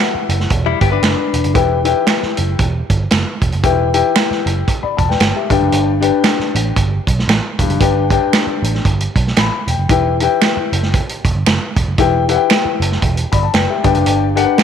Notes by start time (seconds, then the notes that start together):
Already playing: E3 E4 G4 B4 F#5
0.15 muted picked electric bass stroke
0.29 F#1, closed hi-hat
0.40 snare
0.50 E1, kick, closed hi-hat
0.66 G3 E4
0.81 G1 B3 G4, kick, closed hi-hat
0.92 D4 B4
1.02 F#1, finger snap, snare, closed hi-hat
1.34 E1, closed hi-hat
1.44 F#1, closed hi-hat
1.54 E1 E3 E4 G4 B4 G5, kick, closed hi-hat
1.85 E4 G4 B4 G5, closed hi-hat
2.07 finger snap, snare, closed hi-hat
2.23 muted picked electric bass stroke, snare
2.37 F#1, closed hi-hat
2.59 E1, kick, closed hi-hat
2.90 G1, kick, closed hi-hat
3.11 F#1, finger snap, snare, closed hi-hat
3.42 E1, kick, closed hi-hat
3.52 F#1, closed hi-hat
3.63 E1 E3 E4 G4 B4 G5, kick, closed hi-hat
3.94 E4 G4 B4 G5, closed hi-hat
4.16 finger snap, snare, closed hi-hat
4.31 muted picked electric bass stroke, snare
4.46 F#1, closed hi-hat
4.68 kick, closed hi-hat
4.83 D5 B5, muted picked electric bass stroke
4.97 E1 A5, kick, closed hi-hat
5.09 B4 G5, snare
5.20 G1, finger snap, snare, closed hi-hat
5.35 G4 E5
5.50 G1 G2 D4 G4 B4 G5, kick, closed hi-hat
5.61 F#1
5.72 G1, closed hi-hat
6.00 D4 G4 B4 G5, closed hi-hat
6.24 finger snap, snare, closed hi-hat
6.39 muted picked electric bass stroke, snare
6.55 A1, closed hi-hat
6.76 G1, kick, closed hi-hat
7.07 B1, kick, closed hi-hat
7.19 snare
7.28 A1, finger snap, snare, closed hi-hat
7.59 E1 G2, kick, closed hi-hat
7.69 F#1, closed hi-hat
7.80 G1 D4 G4 B4 G5, kick, closed hi-hat
8.10 D4 G4 B4 G5, kick, closed hi-hat
8.33 finger snap, snare, closed hi-hat
8.47 muted picked electric bass stroke
8.62 A1, closed hi-hat
8.75 snare
8.85 G1, kick, closed hi-hat
9.00 closed hi-hat
9.16 B1, kick, closed hi-hat
9.27 snare
9.36 A1 B5, finger snap, snare, closed hi-hat
9.67 E1 G5, closed hi-hat
9.78 F#1
9.89 E1 E3 E4 G4 B4 G5, kick, closed hi-hat
10.20 E4 G4 B4 G5, closed hi-hat
10.41 finger snap, snare, closed hi-hat
10.57 muted picked electric bass stroke
10.72 F#1, closed hi-hat
10.83 snare
10.94 kick, closed hi-hat
11.09 closed hi-hat
11.24 E1, kick, closed hi-hat
11.35 G1
11.46 F#1, finger snap, snare, closed hi-hat
11.76 E1, kick, closed hi-hat
11.86 F#1
11.98 E1 E3 E4 G4 B4 G5, kick, closed hi-hat
12.28 E4 G4 B4 F#5, closed hi-hat
12.36 G5
12.50 finger snap, snare, closed hi-hat
12.65 muted picked electric bass stroke
12.80 F#1, closed hi-hat
12.92 snare
13.02 E1, kick, closed hi-hat
13.17 closed hi-hat
13.32 G1 D5 B5, kick, closed hi-hat
13.43 A5
13.54 F#1 B4 G5, finger snap, snare, closed hi-hat
13.69 G4 E5
13.83 G1 G2 D4 G4 B4 G5, kick, closed hi-hat
13.95 F#1, closed hi-hat
14.06 G1, closed hi-hat
14.35 D4 G4 A#4 F#5, closed hi-hat
14.42 B4
14.58 finger snap, snare, closed hi-hat